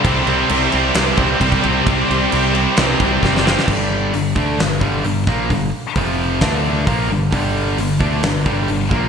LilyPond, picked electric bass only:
\new Staff \with { instrumentName = "Picked electric bass" } { \clef bass \time 4/4 \key g \minor \tempo 4 = 132 c,8 c,8 c,8 c,8 c,8 c,8 c,8 c,8 | c,8 c,8 c,4 c,8 c,8 fis,,4 | g,,4 g,,8 d,8 g,,8 g,,8 g,,8 bes,,8 | g,,8 r8 f,,4 d,4 bes,,8 g,,8 |
g,,4 g,,8 d,8 g,,8 g,,8 g,,8 bes,,8 | }